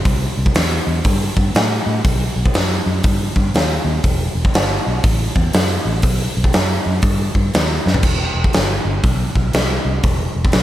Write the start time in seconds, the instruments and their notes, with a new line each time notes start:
0.05 fingered electric bass C2, kick, open hi-hat
0.37 fingered electric bass C2
0.46 kick
0.54 fingered electric bass E2, snare, open hi-hat
0.87 fingered electric bass E2
1.04 fingered electric bass G2, kick, open hi-hat
1.37 fingered electric bass G2, kick
1.55 fingered electric bass A2, snare, open hi-hat
1.86 fingered electric bass A2
2.05 fingered electric bass B1, kick, open hi-hat
2.36 fingered electric bass B1
2.46 kick
2.54 fingered electric bass F#2, snare, open hi-hat
2.86 fingered electric bass F#2
3.03 fingered electric bass G2, kick, open hi-hat
3.36 fingered electric bass G2, kick
3.54 fingered electric bass D#2, snare, open hi-hat
3.85 fingered electric bass D#2
4.04 fingered electric bass E1, kick, open hi-hat
4.35 fingered electric bass E1
4.45 kick
4.54 fingered electric bass G1, snare, open hi-hat
4.87 fingered electric bass B1
5.04 fingered electric bass A1, kick, open hi-hat
5.36 fingered electric bass E2, kick
5.53 fingered electric bass F#2, snare, open hi-hat
5.85 fingered electric bass A1
6.02 fingered electric bass B1, kick, open hi-hat
6.37 fingered electric bass B1
6.44 kick
6.53 fingered electric bass F#2, snare, open hi-hat
6.86 fingered electric bass F#2
7.02 fingered electric bass G2, kick, open hi-hat
7.35 fingered electric bass G2, kick
7.54 fingered electric bass D#2, snare, open hi-hat
7.86 fingered electric bass F#2, snare
7.94 floor tom
8.03 fingered electric bass E1, kick, crash
8.35 fingered electric bass E1
8.44 kick
8.53 fingered electric bass G1, snare, open hi-hat
8.85 fingered electric bass G1
9.04 fingered electric bass B1, kick, open hi-hat
9.36 fingered electric bass B1, kick
9.53 fingered electric bass C2, snare, open hi-hat
9.85 fingered electric bass C2
10.03 fingered electric bass E1, kick, open hi-hat
10.36 fingered electric bass E1
10.45 kick
10.52 fingered electric bass B1, snare, open hi-hat